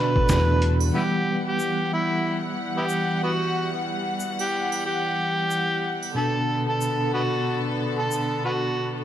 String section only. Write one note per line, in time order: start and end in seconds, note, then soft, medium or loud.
0.00 0.90 D3 medium
0.00 0.92 A3 medium
0.00 0.90 A4 medium
0.94 6.12 E3 medium
0.94 6.12 G3 medium
0.94 6.12 F#5 medium
6.16 9.04 D3 medium
6.16 9.04 B3 medium
6.16 9.04 A4 medium